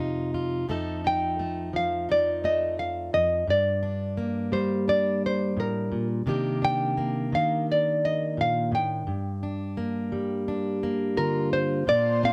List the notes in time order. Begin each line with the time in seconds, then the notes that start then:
Already playing: F2 C3 F3 F4
0.00 D#4
0.34 F4
0.68 F2 F3 A3 D#4 A4
1.04 D#4 G5
1.39 A3
1.73 F3 F5
2.09 D#4 D5
2.44 A3 D#5
2.79 F5
3.13 F2 D#5
3.47 G2 D5
3.83 D4
4.17 A#3
4.52 G3 C5
4.88 D4 D5
5.26 C5
5.57 A2 A#4
5.92 A#2
6.26 C3 D#3 A#3 D4 G4
6.62 D4 G5
6.97 A#3
7.32 D#3 F5
7.72 D5
8.05 D#5
8.37 A#2 F5
8.72 A2 G5
9.07 G2
9.43 D4
9.77 A#3
10.12 G3
10.48 D4
10.83 A#3
11.17 D3 F4 A#4
11.53 C5
11.87 A#2 A#3 D4 F4 C5 D5
12.23 C4 F5